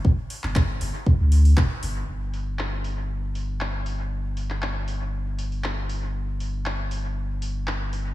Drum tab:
HH |--o---o---oo--o-|--o---o---o---o-|--o---o---oo--o-|--o---o---o---o-|
CP |---xx-------x---|----x-------x---|---xx-------x---|----x-------x---|
BD |o---o---o---o---|----------------|----------------|----------------|